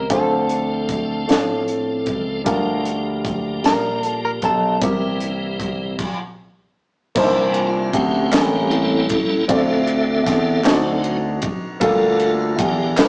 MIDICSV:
0, 0, Header, 1, 6, 480
1, 0, Start_track
1, 0, Tempo, 783290
1, 65, Time_signature, 6, 3, 24, 8
1, 3905, Tempo, 777202
1, 8048, End_track
2, 0, Start_track
2, 0, Title_t, "Clean electric guitar"
2, 0, Program_c, 0, 27
2, 73, Note_on_c, 0, 69, 66
2, 1247, Note_off_c, 0, 69, 0
2, 2240, Note_on_c, 0, 70, 85
2, 2479, Note_off_c, 0, 70, 0
2, 2479, Note_on_c, 0, 69, 85
2, 2570, Note_off_c, 0, 69, 0
2, 2604, Note_on_c, 0, 70, 74
2, 2634, Note_off_c, 0, 70, 0
2, 2727, Note_on_c, 0, 69, 81
2, 2941, Note_off_c, 0, 69, 0
2, 2963, Note_on_c, 0, 67, 72
2, 3470, Note_off_c, 0, 67, 0
2, 8048, End_track
3, 0, Start_track
3, 0, Title_t, "Grand piano"
3, 0, Program_c, 1, 0
3, 0, Control_c, 1, 64, 127
3, 0, Note_on_c, 1, 58, 52
3, 0, Note_on_c, 1, 64, 51
3, 0, Note_on_c, 1, 67, 51
3, 60, Note_on_c, 1, 57, 69
3, 63, Note_on_c, 1, 50, 52
3, 63, Note_on_c, 1, 62, 63
3, 69, Note_on_c, 1, 65, 65
3, 72, Note_on_c, 1, 72, 80
3, 73, Control_c, 1, 64, 0
3, 74, Note_off_c, 1, 64, 0
3, 74, Note_off_c, 1, 67, 0
3, 77, Note_off_c, 1, 58, 0
3, 182, Control_c, 1, 64, 127
3, 636, Note_off_c, 1, 57, 0
3, 638, Note_off_c, 1, 62, 0
3, 641, Note_off_c, 1, 65, 0
3, 643, Note_off_c, 1, 72, 0
3, 761, Note_off_c, 1, 50, 0
3, 781, Note_on_c, 1, 57, 60
3, 787, Note_on_c, 1, 62, 61
3, 791, Note_on_c, 1, 65, 61
3, 797, Note_on_c, 1, 74, 73
3, 1357, Note_off_c, 1, 57, 0
3, 1360, Note_off_c, 1, 62, 0
3, 1362, Note_off_c, 1, 65, 0
3, 1365, Note_off_c, 1, 74, 0
3, 1497, Note_on_c, 1, 55, 82
3, 1501, Note_on_c, 1, 62, 72
3, 1502, Note_on_c, 1, 50, 61
3, 1509, Note_on_c, 1, 65, 76
3, 1510, Note_on_c, 1, 70, 89
3, 1515, Control_c, 1, 64, 0
3, 1625, Control_c, 1, 64, 127
3, 2075, Note_off_c, 1, 55, 0
3, 2077, Note_off_c, 1, 62, 0
3, 2081, Note_off_c, 1, 65, 0
3, 2082, Note_off_c, 1, 70, 0
3, 2201, Note_off_c, 1, 50, 0
3, 2222, Note_on_c, 1, 55, 54
3, 2224, Note_on_c, 1, 62, 53
3, 2227, Note_on_c, 1, 65, 50
3, 2232, Note_on_c, 1, 70, 60
3, 2797, Note_off_c, 1, 55, 0
3, 2799, Note_off_c, 1, 62, 0
3, 2800, Note_off_c, 1, 65, 0
3, 2803, Note_off_c, 1, 70, 0
3, 2948, Note_on_c, 1, 55, 74
3, 2952, Note_on_c, 1, 60, 58
3, 2953, Note_on_c, 1, 48, 56
3, 2956, Control_c, 1, 64, 0
3, 2958, Note_on_c, 1, 64, 58
3, 2958, Note_on_c, 1, 70, 80
3, 3066, Control_c, 1, 64, 127
3, 3520, Note_off_c, 1, 55, 0
3, 3522, Note_off_c, 1, 60, 0
3, 3524, Note_off_c, 1, 64, 0
3, 3525, Note_off_c, 1, 70, 0
3, 3644, Note_off_c, 1, 48, 0
3, 3674, Control_c, 1, 64, 0
3, 4385, Note_on_c, 1, 58, 95
3, 4390, Note_on_c, 1, 62, 86
3, 4391, Note_on_c, 1, 48, 77
3, 4392, Note_on_c, 1, 63, 71
3, 4400, Note_on_c, 1, 72, 109
3, 4429, Note_off_c, 1, 63, 0
3, 4434, Note_on_c, 1, 64, 92
3, 4514, Control_c, 1, 64, 127
3, 4961, Note_off_c, 1, 58, 0
3, 4963, Note_off_c, 1, 62, 0
3, 4968, Note_off_c, 1, 72, 0
3, 4985, Note_off_c, 1, 64, 0
3, 5087, Note_off_c, 1, 48, 0
3, 5112, Note_on_c, 1, 58, 71
3, 5114, Note_on_c, 1, 67, 60
3, 5116, Note_on_c, 1, 45, 63
3, 5118, Control_c, 1, 64, 0
3, 5122, Note_on_c, 1, 69, 58
3, 5125, Note_on_c, 1, 73, 67
3, 5242, Control_c, 1, 64, 127
3, 5684, Note_off_c, 1, 58, 0
3, 5685, Note_off_c, 1, 67, 0
3, 5689, Note_off_c, 1, 69, 0
3, 5690, Note_off_c, 1, 73, 0
3, 5809, Note_off_c, 1, 45, 0
3, 5825, Note_on_c, 1, 60, 80
3, 5830, Note_on_c, 1, 64, 76
3, 5833, Note_on_c, 1, 50, 65
3, 5835, Note_on_c, 1, 65, 70
3, 5838, Control_c, 1, 64, 0
3, 5839, Note_on_c, 1, 74, 88
3, 5938, Control_c, 1, 64, 127
3, 6400, Note_off_c, 1, 60, 0
3, 6403, Note_off_c, 1, 64, 0
3, 6405, Note_off_c, 1, 65, 0
3, 6407, Note_off_c, 1, 74, 0
3, 6527, Note_off_c, 1, 50, 0
3, 6546, Note_on_c, 1, 60, 85
3, 6549, Note_on_c, 1, 63, 73
3, 6555, Note_on_c, 1, 50, 76
3, 6558, Control_c, 1, 64, 0
3, 6558, Note_on_c, 1, 66, 72
3, 6558, Note_on_c, 1, 73, 73
3, 6594, Note_off_c, 1, 73, 0
3, 6599, Note_on_c, 1, 74, 86
3, 6651, Control_c, 1, 64, 127
3, 7120, Note_off_c, 1, 60, 0
3, 7121, Note_off_c, 1, 63, 0
3, 7126, Note_off_c, 1, 66, 0
3, 7146, Note_off_c, 1, 74, 0
3, 7247, Note_off_c, 1, 50, 0
3, 7257, Note_on_c, 1, 55, 97
3, 7258, Note_on_c, 1, 58, 91
3, 7263, Note_on_c, 1, 50, 86
3, 7263, Note_on_c, 1, 65, 98
3, 7267, Note_on_c, 1, 69, 112
3, 7277, Control_c, 1, 64, 0
3, 7388, Control_c, 1, 64, 127
3, 7834, Note_off_c, 1, 55, 0
3, 7835, Note_off_c, 1, 58, 0
3, 7837, Note_off_c, 1, 65, 0
3, 7839, Note_off_c, 1, 69, 0
3, 7960, Note_off_c, 1, 50, 0
3, 7978, Note_on_c, 1, 58, 69
3, 7980, Note_on_c, 1, 62, 63
3, 7984, Note_on_c, 1, 65, 62
3, 7985, Note_on_c, 1, 48, 63
3, 7986, Note_on_c, 1, 71, 65
3, 7995, Control_c, 1, 64, 0
3, 8027, Note_off_c, 1, 71, 0
3, 8029, Note_on_c, 1, 72, 76
3, 8048, Note_off_c, 1, 48, 0
3, 8048, Note_off_c, 1, 58, 0
3, 8048, Note_off_c, 1, 62, 0
3, 8048, Note_off_c, 1, 65, 0
3, 8048, Note_off_c, 1, 72, 0
3, 8048, End_track
4, 0, Start_track
4, 0, Title_t, "Tonewheel organ"
4, 0, Program_c, 2, 16
4, 62, Note_on_c, 2, 53, 47
4, 62, Note_on_c, 2, 62, 47
4, 63, Note_on_c, 2, 60, 48
4, 65, Note_on_c, 2, 69, 54
4, 1482, Note_off_c, 2, 53, 0
4, 1482, Note_off_c, 2, 60, 0
4, 1482, Note_off_c, 2, 62, 0
4, 1483, Note_off_c, 2, 69, 0
4, 1514, Note_on_c, 2, 57, 47
4, 1515, Note_on_c, 2, 62, 63
4, 1515, Note_on_c, 2, 67, 72
4, 1518, Note_on_c, 2, 53, 65
4, 1551, Note_off_c, 2, 57, 0
4, 1556, Note_on_c, 2, 58, 55
4, 2927, Note_off_c, 2, 62, 0
4, 2927, Note_off_c, 2, 67, 0
4, 2928, Note_off_c, 2, 53, 0
4, 2946, Note_off_c, 2, 58, 0
4, 2953, Note_on_c, 2, 58, 53
4, 2954, Note_on_c, 2, 52, 55
4, 2954, Note_on_c, 2, 60, 52
4, 2955, Note_on_c, 2, 65, 47
4, 2991, Note_off_c, 2, 65, 0
4, 2993, Note_on_c, 2, 67, 59
4, 3669, Note_off_c, 2, 52, 0
4, 3669, Note_off_c, 2, 58, 0
4, 3669, Note_off_c, 2, 60, 0
4, 3689, Note_off_c, 2, 67, 0
4, 4389, Note_on_c, 2, 52, 53
4, 4394, Note_on_c, 2, 58, 51
4, 4397, Note_on_c, 2, 62, 60
4, 4632, Note_on_c, 2, 65, 76
4, 4708, Note_off_c, 2, 52, 0
4, 4711, Note_off_c, 2, 58, 0
4, 4713, Note_off_c, 2, 62, 0
4, 4865, Note_on_c, 2, 67, 91
4, 4868, Note_on_c, 2, 60, 72
4, 4870, Note_on_c, 2, 61, 70
4, 4878, Note_off_c, 2, 65, 0
4, 5098, Note_on_c, 2, 55, 58
4, 5099, Note_off_c, 2, 61, 0
4, 5103, Note_on_c, 2, 58, 55
4, 5106, Note_on_c, 2, 61, 61
4, 5341, Note_off_c, 2, 61, 0
4, 5347, Note_on_c, 2, 69, 108
4, 5348, Note_on_c, 2, 61, 73
4, 5349, Note_on_c, 2, 64, 74
4, 5363, Note_off_c, 2, 67, 0
4, 5565, Note_off_c, 2, 60, 0
4, 5800, Note_off_c, 2, 55, 0
4, 5802, Note_off_c, 2, 58, 0
4, 5804, Note_off_c, 2, 69, 0
4, 5805, Note_off_c, 2, 61, 0
4, 5805, Note_off_c, 2, 64, 0
4, 5821, Note_on_c, 2, 50, 54
4, 5827, Note_on_c, 2, 60, 65
4, 5830, Note_on_c, 2, 69, 92
4, 5830, Note_on_c, 2, 76, 57
4, 6521, Note_off_c, 2, 50, 0
4, 6525, Note_off_c, 2, 76, 0
4, 6541, Note_off_c, 2, 60, 0
4, 6548, Note_on_c, 2, 54, 58
4, 6548, Note_on_c, 2, 60, 55
4, 6554, Note_on_c, 2, 63, 66
4, 6765, Note_off_c, 2, 69, 0
4, 6868, Note_off_c, 2, 54, 0
4, 6868, Note_off_c, 2, 60, 0
4, 6871, Note_off_c, 2, 63, 0
4, 7268, Note_on_c, 2, 69, 58
4, 7274, Note_on_c, 2, 58, 50
4, 7277, Note_on_c, 2, 65, 66
4, 7509, Note_off_c, 2, 65, 0
4, 7517, Note_on_c, 2, 65, 79
4, 7587, Note_off_c, 2, 69, 0
4, 7590, Note_off_c, 2, 58, 0
4, 7744, Note_on_c, 2, 58, 63
4, 7748, Note_on_c, 2, 62, 63
4, 7751, Note_on_c, 2, 67, 88
4, 7759, Note_off_c, 2, 65, 0
4, 7985, Note_off_c, 2, 58, 0
4, 7986, Note_off_c, 2, 62, 0
4, 7992, Note_on_c, 2, 58, 60
4, 7993, Note_on_c, 2, 62, 51
4, 7996, Note_on_c, 2, 65, 60
4, 8048, Note_off_c, 2, 58, 0
4, 8048, Note_off_c, 2, 62, 0
4, 8048, Note_off_c, 2, 65, 0
4, 8048, Note_off_c, 2, 67, 0
4, 8048, End_track
5, 0, Start_track
5, 0, Title_t, "Slap bass"
5, 0, Program_c, 3, 36
5, 60, Note_on_c, 3, 38, 75
5, 760, Note_off_c, 3, 38, 0
5, 787, Note_on_c, 3, 45, 79
5, 1268, Note_on_c, 3, 37, 69
5, 1277, Note_off_c, 3, 45, 0
5, 1489, Note_off_c, 3, 37, 0
5, 1508, Note_on_c, 3, 38, 82
5, 2204, Note_off_c, 3, 38, 0
5, 2232, Note_on_c, 3, 46, 86
5, 2685, Note_off_c, 3, 46, 0
5, 2713, Note_on_c, 3, 35, 80
5, 2931, Note_off_c, 3, 35, 0
5, 2951, Note_on_c, 3, 36, 81
5, 3643, Note_off_c, 3, 36, 0
5, 4391, Note_on_c, 3, 36, 95
5, 4846, Note_off_c, 3, 36, 0
5, 4872, Note_on_c, 3, 38, 88
5, 5092, Note_off_c, 3, 38, 0
5, 5108, Note_on_c, 3, 33, 93
5, 5564, Note_off_c, 3, 33, 0
5, 5830, Note_on_c, 3, 38, 105
5, 6285, Note_off_c, 3, 38, 0
5, 6309, Note_on_c, 3, 40, 87
5, 6530, Note_off_c, 3, 40, 0
5, 6544, Note_on_c, 3, 38, 105
5, 7002, Note_off_c, 3, 38, 0
5, 7267, Note_on_c, 3, 38, 102
5, 7722, Note_off_c, 3, 38, 0
5, 7745, Note_on_c, 3, 40, 87
5, 7967, Note_off_c, 3, 40, 0
5, 7988, Note_on_c, 3, 36, 110
5, 8048, Note_off_c, 3, 36, 0
5, 8048, End_track
6, 0, Start_track
6, 0, Title_t, "Drums"
6, 62, Note_on_c, 9, 36, 88
6, 62, Note_on_c, 9, 42, 70
6, 123, Note_off_c, 9, 36, 0
6, 123, Note_off_c, 9, 42, 0
6, 303, Note_on_c, 9, 42, 41
6, 364, Note_off_c, 9, 42, 0
6, 544, Note_on_c, 9, 36, 66
6, 548, Note_on_c, 9, 42, 38
6, 606, Note_off_c, 9, 36, 0
6, 609, Note_off_c, 9, 42, 0
6, 791, Note_on_c, 9, 42, 53
6, 801, Note_on_c, 9, 38, 80
6, 852, Note_off_c, 9, 42, 0
6, 862, Note_off_c, 9, 38, 0
6, 1029, Note_on_c, 9, 42, 35
6, 1090, Note_off_c, 9, 42, 0
6, 1263, Note_on_c, 9, 42, 35
6, 1267, Note_on_c, 9, 36, 57
6, 1324, Note_off_c, 9, 42, 0
6, 1329, Note_off_c, 9, 36, 0
6, 1508, Note_on_c, 9, 42, 71
6, 1509, Note_on_c, 9, 36, 90
6, 1569, Note_off_c, 9, 42, 0
6, 1570, Note_off_c, 9, 36, 0
6, 1749, Note_on_c, 9, 42, 38
6, 1811, Note_off_c, 9, 42, 0
6, 1990, Note_on_c, 9, 36, 72
6, 1995, Note_on_c, 9, 42, 42
6, 2051, Note_off_c, 9, 36, 0
6, 2056, Note_off_c, 9, 42, 0
6, 2232, Note_on_c, 9, 42, 57
6, 2243, Note_on_c, 9, 38, 77
6, 2294, Note_off_c, 9, 42, 0
6, 2304, Note_off_c, 9, 38, 0
6, 2471, Note_on_c, 9, 42, 39
6, 2532, Note_off_c, 9, 42, 0
6, 2709, Note_on_c, 9, 42, 38
6, 2711, Note_on_c, 9, 36, 62
6, 2770, Note_off_c, 9, 42, 0
6, 2772, Note_off_c, 9, 36, 0
6, 2950, Note_on_c, 9, 42, 73
6, 2951, Note_on_c, 9, 36, 93
6, 3012, Note_off_c, 9, 42, 0
6, 3013, Note_off_c, 9, 36, 0
6, 3189, Note_on_c, 9, 42, 39
6, 3251, Note_off_c, 9, 42, 0
6, 3430, Note_on_c, 9, 36, 63
6, 3434, Note_on_c, 9, 42, 38
6, 3491, Note_off_c, 9, 36, 0
6, 3496, Note_off_c, 9, 42, 0
6, 3670, Note_on_c, 9, 36, 78
6, 3671, Note_on_c, 9, 49, 67
6, 3731, Note_off_c, 9, 36, 0
6, 3732, Note_off_c, 9, 49, 0
6, 4388, Note_on_c, 9, 49, 88
6, 4390, Note_on_c, 9, 36, 110
6, 4450, Note_off_c, 9, 49, 0
6, 4452, Note_off_c, 9, 36, 0
6, 4626, Note_on_c, 9, 53, 40
6, 4688, Note_off_c, 9, 53, 0
6, 4870, Note_on_c, 9, 36, 77
6, 4872, Note_on_c, 9, 53, 56
6, 4932, Note_off_c, 9, 36, 0
6, 4934, Note_off_c, 9, 53, 0
6, 5111, Note_on_c, 9, 53, 61
6, 5112, Note_on_c, 9, 39, 102
6, 5122, Note_on_c, 9, 38, 98
6, 5173, Note_off_c, 9, 53, 0
6, 5174, Note_off_c, 9, 39, 0
6, 5183, Note_off_c, 9, 38, 0
6, 5350, Note_on_c, 9, 53, 33
6, 5412, Note_off_c, 9, 53, 0
6, 5585, Note_on_c, 9, 53, 49
6, 5591, Note_on_c, 9, 36, 77
6, 5647, Note_off_c, 9, 53, 0
6, 5653, Note_off_c, 9, 36, 0
6, 5830, Note_on_c, 9, 36, 113
6, 5830, Note_on_c, 9, 53, 75
6, 5892, Note_off_c, 9, 36, 0
6, 5892, Note_off_c, 9, 53, 0
6, 6066, Note_on_c, 9, 53, 38
6, 6128, Note_off_c, 9, 53, 0
6, 6309, Note_on_c, 9, 36, 80
6, 6313, Note_on_c, 9, 53, 55
6, 6322, Note_on_c, 9, 38, 32
6, 6371, Note_off_c, 9, 36, 0
6, 6375, Note_off_c, 9, 53, 0
6, 6384, Note_off_c, 9, 38, 0
6, 6544, Note_on_c, 9, 39, 108
6, 6549, Note_on_c, 9, 53, 61
6, 6560, Note_on_c, 9, 38, 95
6, 6606, Note_off_c, 9, 39, 0
6, 6611, Note_off_c, 9, 53, 0
6, 6621, Note_off_c, 9, 38, 0
6, 6787, Note_on_c, 9, 53, 37
6, 6849, Note_off_c, 9, 53, 0
6, 7021, Note_on_c, 9, 53, 45
6, 7027, Note_on_c, 9, 36, 81
6, 7082, Note_off_c, 9, 53, 0
6, 7089, Note_off_c, 9, 36, 0
6, 7263, Note_on_c, 9, 53, 77
6, 7265, Note_on_c, 9, 36, 117
6, 7325, Note_off_c, 9, 53, 0
6, 7327, Note_off_c, 9, 36, 0
6, 7501, Note_on_c, 9, 53, 38
6, 7563, Note_off_c, 9, 53, 0
6, 7743, Note_on_c, 9, 36, 89
6, 7746, Note_on_c, 9, 53, 56
6, 7805, Note_off_c, 9, 36, 0
6, 7808, Note_off_c, 9, 53, 0
6, 7981, Note_on_c, 9, 53, 59
6, 7982, Note_on_c, 9, 39, 109
6, 7992, Note_on_c, 9, 38, 106
6, 8043, Note_off_c, 9, 53, 0
6, 8044, Note_off_c, 9, 39, 0
6, 8048, Note_off_c, 9, 38, 0
6, 8048, End_track
0, 0, End_of_file